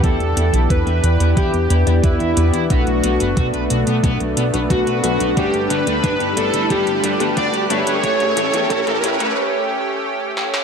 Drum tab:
HH |xxxxxxxxxxxxxxxx|xxxxxxxxxxxxxxxx|xxxxxxxxxxxxxxxx|xxxxxxxx--------|
SD |----------------|----------------|----------------|--------------oo|
T2 |o---o---o---o---|o---o---o---o---|o-o-o-o-o-o-o-o-|oooooooo--------|
BD |o---o---o---o---|o---o---o---o---|o---o---o---o---|o---o-----------|